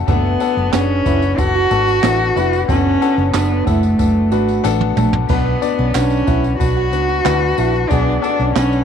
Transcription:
Already playing: grand piano A3 F#4 A4
0.08 fingered electric bass F#1, steel-string acoustic guitar A3, grand piano B3 D4 F#4 A4, cello B3, kick, closed hi-hat, tambourine
0.25 closed hi-hat
0.40 grand piano B3 D4 F#4 A4, closed hi-hat, tambourine
0.57 fingered electric bass F#1, steel-string acoustic guitar B3, closed hi-hat
0.73 fingered electric bass F#1, grand piano B3 D4 F#4 G#4, cello C#4, steel-string acoustic guitar D4, snare, clap, closed hi-hat, tambourine
1.05 fingered electric bass F#1, grand piano B3 D4 F#4 B4, steel-string acoustic guitar E4, kick, closed hi-hat, tambourine
1.22 closed hi-hat, tambourine
1.38 fingered electric bass F#1, grand piano B3 D4 F#4 A4, cello F#4, kick, closed hi-hat, tambourine
1.56 steel-string acoustic guitar F#4
1.70 fingered electric bass G#1, grand piano B3 D4 F#4 A4, closed hi-hat, tambourine
1.88 steel-string acoustic guitar F#4, closed hi-hat, tambourine
2.03 fingered electric bass A1, grand piano B3 D4 F#4 A4, steel-string acoustic guitar E4, snare, clap, closed hi-hat, tambourine
2.20 closed hi-hat
2.36 fingered electric bass F1, grand piano B3 D4 F#4 B4, steel-string acoustic guitar E4, open hi-hat, tambourine
2.53 closed hi-hat, tambourine
2.68 fingered electric bass F#1, grand piano B3 D4 F#4 A4, steel-string acoustic guitar B3, cello C#4, kick, closed hi-hat, tambourine
3.01 grand piano B3 D4 F#4 A4, closed hi-hat, tambourine
3.18 fingered electric bass F#1, steel-string acoustic guitar C#4, closed hi-hat
3.33 fingered electric bass F#1, grand piano B3 D4 F#4 A4, cello B3, steel-string acoustic guitar D4, snare, clap, closed hi-hat, tambourine
3.65 fingered electric bass F#1, cello A3, grand piano B3 D4 F#4 A4, steel-string acoustic guitar E4, kick, closed hi-hat, tambourine
3.83 closed hi-hat, tambourine
3.98 fingered electric bass F#1, grand piano B3 D4 F#4 A4, kick, closed hi-hat, tambourine
4.31 fingered electric bass G#1, grand piano B3 D4 F#4 B4, steel-string acoustic guitar F#4, closed hi-hat, tambourine
4.49 closed hi-hat, tambourine
4.64 fingered electric bass A1, grand piano B3 D4 F#4 A4, snare, tambourine
4.81 high tom
4.96 fingered electric bass A#1, cello A3, grand piano B3 D4 F#4 A4, steel-string acoustic guitar D4, mid tom, tambourine
5.13 floor tom
5.29 fingered electric bass B1, grand piano B2 B3 D4 F#4 B4, cello B3, steel-string acoustic guitar B3, kick, tambourine, crash
5.61 grand piano B3 D4 F#4 D5, closed hi-hat, tambourine
5.78 fingered electric bass B1, steel-string acoustic guitar C#4, closed hi-hat
5.94 fingered electric bass B1, grand piano B3 D4 F#4 B4, cello C#4, steel-string acoustic guitar D4, snare, clap, tambourine
6.10 closed hi-hat, tambourine
6.26 fingered electric bass B1, grand piano B3 D4 F#4 B4, steel-string acoustic guitar E4, kick, closed hi-hat, tambourine
6.44 closed hi-hat, tambourine
6.58 fingered electric bass B1, grand piano B3 D4 F#4 B4, cello F#4, kick, closed hi-hat, tambourine
6.77 steel-string acoustic guitar F#4
6.92 fingered electric bass C#2, grand piano B3 D4 F#4 B4, closed hi-hat, tambourine
7.09 steel-string acoustic guitar F#4, closed hi-hat
7.24 fingered electric bass D2, grand piano B3 D4 F#4 B4, steel-string acoustic guitar E4, snare, clap, tambourine
7.42 closed hi-hat
7.57 fingered electric bass A#1, grand piano B3 D4 F#4 B4, steel-string acoustic guitar E4, open hi-hat, tambourine
7.75 closed hi-hat
7.89 fingered electric bass B1, grand piano B2 B3 D4 F#4 G#4, steel-string acoustic guitar B3, cello D4, kick, closed hi-hat, tambourine
8.08 closed hi-hat
8.21 grand piano B3 D4 F#4 A4, cello D4, closed hi-hat, tambourine
8.39 fingered electric bass B1, steel-string acoustic guitar C#4, closed hi-hat
8.54 fingered electric bass B1, grand piano B3 D4 F#4 B4, cello C#4, steel-string acoustic guitar D4, snare, clap, closed hi-hat, tambourine
8.73 tambourine

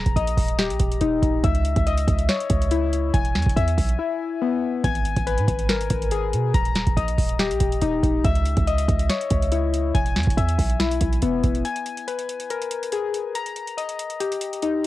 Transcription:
Already playing: synth keys A#5
0.06 808-style bass D#1, kick, closed hi-hat
0.16 808-style bass A#1, synth keys D#5, closed hi-hat
0.27 closed hi-hat
0.37 808-style bass D#1, kick, open hi-hat
0.48 closed hi-hat
0.59 synth keys G4, snare, closed hi-hat
0.70 808-style bass A#1, closed hi-hat
0.80 808-style bass D#1, kick, closed hi-hat
0.92 closed hi-hat
1.01 808-style bass D#1, synth keys D#4, closed hi-hat
1.22 808-style bass D#1, kick, closed hi-hat
1.44 808-style bass C#2, synth keys E5, kick, closed hi-hat
1.55 closed hi-hat
1.65 closed hi-hat
1.76 808-style bass C#2, kick, closed hi-hat
1.87 synth keys D#5, closed hi-hat
1.98 closed hi-hat
2.08 808-style bass C#2, kick, closed hi-hat
2.19 closed hi-hat
2.29 synth keys C#5, snare, closed hi-hat
2.40 closed hi-hat
2.50 808-style bass C#2, kick, closed hi-hat
2.62 closed hi-hat
2.71 synth keys E4, closed hi-hat
2.93 closed hi-hat
3.14 808-style bass E1, synth keys G#5, kick, closed hi-hat
3.25 closed hi-hat
3.35 808-style bass E2, snare, closed hi-hat
3.42 closed hi-hat
3.46 808-style bass E1, kick, closed hi-hat
3.56 808-style bass E2, synth keys E5, closed hi-hat
3.68 closed hi-hat
3.78 808-style bass B1, kick, open hi-hat
3.89 closed hi-hat
3.99 synth keys E4
4.42 synth keys B3
4.84 808-style bass G#1, synth keys G#5, kick, closed hi-hat
4.95 closed hi-hat
5.05 closed hi-hat
5.16 808-style bass G#1, kick, closed hi-hat
5.27 synth keys B4, closed hi-hat
5.38 808-style bass G#2, closed hi-hat
5.48 808-style bass G#1, kick, closed hi-hat
5.59 closed hi-hat
5.69 synth keys A#4, snare, closed hi-hat
5.81 closed hi-hat
5.90 808-style bass G#1, kick, closed hi-hat
6.02 closed hi-hat
6.11 synth keys G#4, closed hi-hat
6.33 808-style bass B2, closed hi-hat
6.54 808-style bass D#1, synth keys A#5, kick, closed hi-hat
6.65 closed hi-hat
6.75 snare, closed hi-hat
6.87 808-style bass D#1, kick, closed hi-hat
6.97 808-style bass A#1, synth keys D#5, closed hi-hat
7.08 closed hi-hat
7.18 808-style bass D#1, kick, open hi-hat
7.29 closed hi-hat
7.39 synth keys G4, snare, closed hi-hat
7.51 808-style bass A#1, closed hi-hat
7.60 808-style bass D#1, kick, closed hi-hat
7.72 closed hi-hat
7.81 808-style bass D#1, synth keys D#4, closed hi-hat
8.03 808-style bass D#1, kick, closed hi-hat
8.24 808-style bass C#2, synth keys E5, kick, closed hi-hat
8.35 closed hi-hat
8.46 closed hi-hat
8.57 808-style bass C#2, kick, closed hi-hat
8.67 synth keys D#5, closed hi-hat
8.78 closed hi-hat
8.88 808-style bass C#2, kick, closed hi-hat
8.99 closed hi-hat
9.10 synth keys C#5, snare, closed hi-hat
9.21 closed hi-hat
9.30 808-style bass C#2, kick, closed hi-hat
9.42 closed hi-hat
9.52 synth keys E4, closed hi-hat
9.74 closed hi-hat
9.95 808-style bass E1, synth keys G#5, kick, closed hi-hat
10.06 closed hi-hat
10.16 808-style bass E2, snare, closed hi-hat
10.23 closed hi-hat
10.27 808-style bass E1, kick, closed hi-hat
10.37 808-style bass E2, synth keys E5, closed hi-hat
10.49 closed hi-hat
10.59 808-style bass B1, kick, open hi-hat
10.70 closed hi-hat
10.80 synth keys E4, snare, closed hi-hat
10.91 closed hi-hat
11.01 808-style bass B1, kick, closed hi-hat
11.13 closed hi-hat
11.22 808-style bass E1, synth keys B3, closed hi-hat
11.44 808-style bass E1, kick, closed hi-hat
11.55 closed hi-hat
11.65 synth keys G#5, closed hi-hat
11.76 closed hi-hat
11.86 closed hi-hat
11.97 closed hi-hat
12.08 synth keys B4, closed hi-hat
12.19 closed hi-hat
12.29 closed hi-hat
12.40 closed hi-hat
12.50 synth keys A#4, closed hi-hat
12.62 closed hi-hat
12.71 closed hi-hat
12.83 closed hi-hat
12.92 synth keys G#4, closed hi-hat
13.14 closed hi-hat
13.35 synth keys A#5, closed hi-hat
13.46 closed hi-hat
13.56 closed hi-hat
13.67 closed hi-hat
13.77 synth keys D#5, closed hi-hat
13.89 closed hi-hat
13.99 closed hi-hat
14.10 closed hi-hat
14.20 synth keys G4, closed hi-hat
14.32 closed hi-hat
14.41 closed hi-hat
14.53 closed hi-hat
14.62 synth keys D#4, closed hi-hat

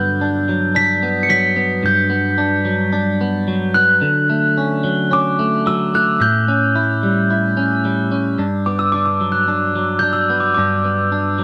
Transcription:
Already playing: clean electric guitar G2 D3 F#3 B3, glockenspiel G6
0.21 clean electric guitar D4
0.49 clean electric guitar F#3
0.75 clean electric guitar D4, glockenspiel B6
1.03 clean electric guitar B3
1.23 glockenspiel C#7
1.29 clean electric guitar F#3, glockenspiel B6
1.56 clean electric guitar B3
1.83 clean electric guitar G2, glockenspiel G6
2.10 clean electric guitar B3
2.38 clean electric guitar D4
2.65 clean electric guitar F#3
2.93 clean electric guitar D4
3.21 clean electric guitar B3
3.48 clean electric guitar F#3
3.74 clean electric guitar B3, glockenspiel F#6
4.02 clean electric guitar D3
4.30 clean electric guitar A3
4.58 clean electric guitar C#4
4.84 clean electric guitar F#3
5.11 clean electric guitar C#4, glockenspiel D6
5.39 clean electric guitar A3
5.66 clean electric guitar F#3, glockenspiel E6
5.94 clean electric guitar A3, glockenspiel F#6
6.20 clean electric guitar A2, glockenspiel G6
6.48 clean electric guitar C#4
6.76 clean electric guitar E4
7.03 clean electric guitar G3
7.30 clean electric guitar E4
7.57 clean electric guitar C#4
7.85 clean electric guitar G3
8.12 clean electric guitar C#4
8.38 clean electric guitar G2 D4
8.66 clean electric guitar B3, glockenspiel D6
8.79 glockenspiel E6
8.92 clean electric guitar D4, glockenspiel D6
9.06 glockenspiel D6
9.21 clean electric guitar F#3
9.32 glockenspiel F#6
9.48 clean electric guitar D4
9.76 clean electric guitar F#3
9.99 clean electric guitar D4, glockenspiel G6
10.13 glockenspiel E6
10.30 clean electric guitar B3
10.40 glockenspiel D6
10.54 clean electric guitar G2 D4, glockenspiel D6
10.84 clean electric guitar B3
11.12 clean electric guitar D4
11.38 clean electric guitar F#3

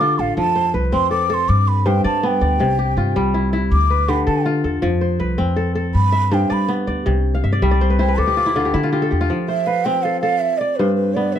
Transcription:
Already playing: upright bass D3, kora D3 G4 A4 B4, bansuri D6
0.01 kora F4
0.19 upright bass A1, kora A4, bansuri F5
0.37 upright bass F2, kora F3, bansuri A5
0.56 kora C5
0.74 upright bass C2, kora B4
0.92 upright bass F2, kora C4, bansuri C6
1.11 kora A4, bansuri D6
1.30 kora A4, bansuri D6
1.34 bansuri C6
1.49 upright bass G2, bansuri D6
1.68 bansuri B5
1.86 kora G2 C5, bansuri G5
2.04 upright bass G3, kora D5, bansuri A5
2.23 kora B3, bansuri G5 A5
2.41 upright bass D2, kora D5
2.60 upright bass C2, kora C3
2.79 kora G4
2.97 upright bass G2, kora F4
3.16 upright bass C2, kora G3
3.34 kora E4
3.53 kora E4
3.72 upright bass D2, bansuri D6
3.90 kora B4
4.08 kora D3 G4, bansuri B5
4.27 upright bass D3, kora A4, bansuri A5
4.46 kora F4
4.64 upright bass E2, kora A4
4.82 upright bass F2, kora F3
5.01 kora C5
5.19 upright bass C2, kora B4
5.38 upright bass F2, kora C4
5.56 kora A4
5.75 kora A4
5.95 upright bass G2, bansuri B5
6.12 kora E5
6.31 kora G2 C5, bansuri G5
6.50 upright bass G3, kora D5, bansuri B5
6.68 kora B3
6.87 upright bass D2, kora D5
7.06 upright bass C2, kora C3
7.35 kora F5
7.44 upright bass G2, kora E5
7.53 kora D5
7.62 upright bass C2, kora G3 E5
7.71 kora D5
7.81 kora C5
7.90 kora B4
7.99 kora E4 C5, bansuri G5
8.08 kora B4
8.18 upright bass D2, kora A4, bansuri D6
8.27 kora G4
8.37 kora F4
8.46 kora E4
8.56 kora D3 F4
8.65 kora G4
8.74 upright bass D3, kora E4
8.83 kora F4
8.92 kora F4 G4
9.02 kora A4
9.11 upright bass E2, kora G4
9.21 kora F4
9.30 kora F3
9.48 kora C5, bansuri E5
9.67 kora B4, bansuri F5
9.85 kora C4, bansuri G5
10.03 kora A4, bansuri F5
10.21 kora A4, bansuri F5
10.40 bansuri E5
10.58 bansuri D5, kora D5
10.76 kora G2 C5, bansuri B4
10.95 bansuri B4
11.14 kora B3, bansuri D5
11.33 bansuri B4, kora E5

